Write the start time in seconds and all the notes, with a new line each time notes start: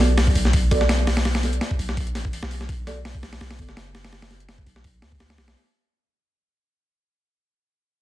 Already playing: B1
0.18 snare, open hi-hat
0.27 kick
0.35 B1, open hi-hat
0.45 snare
0.53 kick, open hi-hat
0.71 B3 F#4 A4 D5, kick, open hi-hat
0.81 snare
0.89 snare, open hi-hat
1.07 snare, open hi-hat
1.17 snare, open hi-hat
1.25 snare, open hi-hat
1.35 snare, open hi-hat
1.43 B3 F#4 A4 D5, snare, open hi-hat
1.53 closed hi-hat
1.61 snare, open hi-hat
1.71 kick
1.79 B1, open hi-hat
1.89 snare
1.97 kick, open hi-hat
2.07 closed hi-hat
2.15 A1, snare, open hi-hat
2.25 kick
2.33 open hi-hat
2.43 B1, snare
2.51 open hi-hat
2.61 snare
2.69 kick, open hi-hat
2.87 B3 F#4 A4 D5, snare, open hi-hat
3.05 snare, open hi-hat
3.15 kick
3.23 B1, snare, open hi-hat
3.33 snare, open hi-hat
3.41 B1, snare, open hi-hat
3.51 snare, open hi-hat
3.58 F#1 B3 F#4 A4 D5, kick, open hi-hat
3.69 snare
3.77 snare, open hi-hat
3.95 snare, open hi-hat
4.04 snare, open hi-hat
4.13 snare, open hi-hat
4.22 snare, open hi-hat
4.30 B3 F#4 A4 D5, snare, open hi-hat
4.40 closed hi-hat
4.49 snare, open hi-hat
4.58 kick
4.67 B1, open hi-hat
4.76 snare
4.84 kick, open hi-hat
5.02 D2, snare, open hi-hat
5.12 kick
5.20 snare, open hi-hat
5.30 snare, open hi-hat
5.38 B1, snare, open hi-hat
5.48 snare, open hi-hat